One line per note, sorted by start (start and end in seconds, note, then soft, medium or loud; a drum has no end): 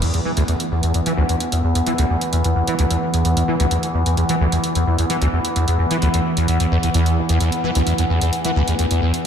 0.02 0.12 E2 medium
0.02 9.27 E3 medium
0.02 9.27 B3 medium
0.02 closed hi-hat medium
0.02 crash medium
0.14 0.20 E2 medium
0.14 closed hi-hat medium
0.25 0.32 E3 loud
0.37 0.43 D2 loud
0.37 closed hi-hat medium
0.48 0.55 E2 medium
0.48 closed hi-hat medium
0.60 closed hi-hat medium
0.71 0.81 E2 medium
0.83 0.92 E2 medium
0.83 closed hi-hat medium
0.94 1.01 E2 medium
0.94 closed hi-hat medium
1.06 1.12 E3 loud
1.06 closed hi-hat medium
1.17 1.24 D2 loud
1.29 1.35 E2 medium
1.29 closed hi-hat medium
1.40 closed hi-hat medium
1.52 1.62 E2 medium
1.52 closed hi-hat medium
1.64 1.73 E2 medium
1.75 1.81 E2 medium
1.75 closed hi-hat medium
1.87 1.93 E3 loud
1.87 closed hi-hat medium
1.98 2.05 D2 loud
1.98 closed hi-hat medium
2.10 2.16 E2 medium
2.21 closed hi-hat medium
2.33 2.43 E2 medium
2.33 closed hi-hat medium
2.44 2.54 E2 medium
2.44 closed hi-hat medium
2.56 2.62 E2 medium
2.67 2.74 E3 loud
2.67 closed hi-hat medium
2.79 2.85 D2 loud
2.79 closed hi-hat medium
2.90 2.97 E2 medium
2.90 closed hi-hat medium
3.14 3.23 E2 medium
3.14 closed hi-hat medium
3.25 3.35 E2 medium
3.25 closed hi-hat medium
3.37 3.43 E2 medium
3.37 closed hi-hat medium
3.48 3.55 E3 loud
3.60 3.66 D2 loud
3.60 closed hi-hat medium
3.71 3.78 E2 medium
3.71 closed hi-hat medium
3.83 closed hi-hat medium
3.94 4.04 E2 medium
4.06 4.15 E2 medium
4.06 closed hi-hat medium
4.17 4.24 E2 medium
4.17 closed hi-hat medium
4.29 4.35 E3 loud
4.29 closed hi-hat medium
4.40 4.47 D2 loud
4.52 4.58 E2 medium
4.52 closed hi-hat medium
4.64 closed hi-hat medium
4.75 4.85 E2 medium
4.75 closed hi-hat medium
4.87 4.96 E2 medium
4.98 5.05 E2 medium
4.98 closed hi-hat medium
5.10 5.16 E3 loud
5.10 closed hi-hat medium
5.21 5.28 D2 loud
5.21 closed hi-hat medium
5.33 5.39 E2 medium
5.45 closed hi-hat medium
5.56 5.66 E2 medium
5.56 closed hi-hat medium
5.68 5.77 E2 medium
5.68 closed hi-hat medium
5.79 5.85 E2 medium
5.91 5.97 E3 loud
5.91 closed hi-hat medium
6.02 6.09 D2 loud
6.02 closed hi-hat medium
6.14 6.20 E2 medium
6.14 closed hi-hat medium
6.37 6.46 E2 medium
6.37 closed hi-hat medium
6.48 6.58 E2 medium
6.48 closed hi-hat medium
6.60 6.66 E2 medium
6.60 closed hi-hat medium
6.71 6.78 E2 loud
6.83 6.89 E2 medium
6.83 closed hi-hat medium
6.94 7.19 E2 loud
6.94 closed hi-hat medium
7.06 closed hi-hat medium
7.17 7.21 D2 medium
7.29 7.39 E2 loud
7.29 closed hi-hat medium
7.40 7.50 E2 medium
7.40 closed hi-hat medium
7.52 closed hi-hat medium
7.64 7.70 E3 loud
7.75 7.82 D2 loud
7.75 closed hi-hat medium
7.87 7.93 E2 medium
7.87 closed hi-hat medium
7.98 8.05 E2 medium
7.98 closed hi-hat medium
8.10 8.19 E2 medium
8.21 8.31 E2 medium
8.21 closed hi-hat medium
8.33 closed hi-hat medium
8.45 8.51 E3 loud
8.45 closed hi-hat medium
8.56 8.62 D2 loud
8.68 8.74 E2 medium
8.68 closed hi-hat medium
8.79 8.85 E2 medium
8.79 closed hi-hat medium
8.91 9.00 E2 medium
8.91 closed hi-hat medium
9.02 9.12 E2 medium
9.14 closed hi-hat medium